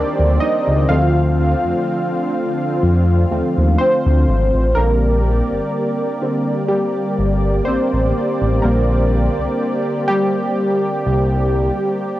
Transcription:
Already playing: D#3 A#3 C4 D4 G4 A#4 D5
0.19 D2
0.40 D#4 D#5
0.67 C#2
0.89 D2 D3 F3 A3 C4 F4 F5
1.64 F2
2.83 F2
3.31 D#2 F3 A3 C4
3.58 D#2
3.78 C4 C5
4.06 D2
4.28 G#1
4.55 A1
4.75 A#1 D3 G3 A#3 C4 G4 A#4 D5
5.51 G1
6.21 D3 G3 C4
6.68 G3 G4
7.19 G1
7.65 A1 C4 C5
7.93 A1
8.42 A1
8.62 A#1 D3 G3 A#3 C4 A#4
9.39 C2
10.08 G3 G4
11.06 C2

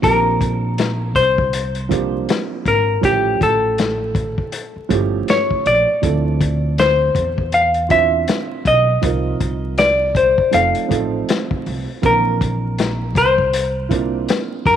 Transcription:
0.02 A#1 F3 A#3 C4 D4 G4 A#4, kick, closed hi-hat
0.41 kick, closed hi-hat
0.78 snare, closed hi-hat
1.15 C2 C5, kick, closed hi-hat
1.38 kick
1.53 closed hi-hat
1.75 closed hi-hat
1.89 F3 A#3 C4 D4 G4, kick, closed hi-hat
2.29 snare, closed hi-hat
2.66 G#1 A#4, kick, closed hi-hat
3.01 A1 F3 A3 C#4 E4 G4, kick, closed hi-hat
3.41 A1 A4, kick, closed hi-hat
3.78 snare, closed hi-hat
4.15 kick, closed hi-hat
4.38 kick
4.52 closed hi-hat
4.76 muted upright bass stroke
4.89 G1 F3 A3 C#4 E4 G4, kick, closed hi-hat
5.28 C#5, snare, closed hi-hat
5.51 kick
5.66 A#1 D5, closed hi-hat
6.02 D2 F3 C4 D4 E4 A4, kick, closed hi-hat
6.41 kick, closed hi-hat
6.78 C5, snare, closed hi-hat
7.15 E2, kick, closed hi-hat
7.38 kick
7.52 F5, closed hi-hat
7.74 closed hi-hat
7.88 C4 D4 E4 F4 C5 E5, kick, closed hi-hat
8.28 snare, closed hi-hat
8.65 B1 D#5, kick, closed hi-hat
9.01 C2 F3 C4 D#4 F4 A#4, kick, closed hi-hat
9.40 C2, kick, closed hi-hat
9.78 D5, snare, closed hi-hat
10.15 C5, kick, closed hi-hat
10.38 kick
10.51 F1 F3 A3 C4 D#4 A4 F5, closed hi-hat
10.75 closed hi-hat
10.88 A1 F3 A3 C4 D#4 A4, kick, closed hi-hat
11.29 snare, closed hi-hat
11.51 kick
11.66 C2, open hi-hat
12.02 A#1 E3 A#3 C4 D4 A#4, kick, closed hi-hat
12.06 A#4
12.41 kick, closed hi-hat
12.78 snare, closed hi-hat
13.15 C2 C5, kick, closed hi-hat
13.38 kick
13.53 closed hi-hat
13.89 A#3 C4 D4 E4 F4, kick, closed hi-hat
14.28 snare, closed hi-hat
14.66 F#1 A#4, kick, open hi-hat

